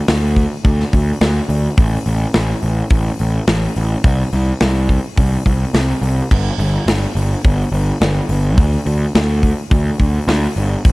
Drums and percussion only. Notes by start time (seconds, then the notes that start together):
0.08 snare, open hi-hat
0.36 kick, open hi-hat
0.65 kick, open hi-hat
0.80 snare
0.93 kick, open hi-hat
1.21 snare, open hi-hat
1.50 open hi-hat
1.78 kick, open hi-hat
2.06 open hi-hat
2.34 snare, open hi-hat
2.62 open hi-hat
2.90 kick, open hi-hat
3.19 open hi-hat
3.47 snare, open hi-hat
3.76 open hi-hat
4.04 kick, open hi-hat
4.33 open hi-hat
4.60 snare, open hi-hat
4.89 kick, open hi-hat
5.18 kick, open hi-hat
5.46 kick, open hi-hat
5.74 snare, open hi-hat
6.03 open hi-hat
6.31 kick, crash
6.60 open hi-hat
6.88 snare, open hi-hat
7.17 open hi-hat
7.45 kick, open hi-hat
7.74 open hi-hat
8.01 snare, open hi-hat
8.29 open hi-hat
8.58 kick, open hi-hat
8.86 open hi-hat
9.15 snare, open hi-hat
9.43 kick, open hi-hat
9.71 kick, open hi-hat
9.99 kick, open hi-hat
10.28 snare, open hi-hat
10.56 open hi-hat
10.85 kick, open hi-hat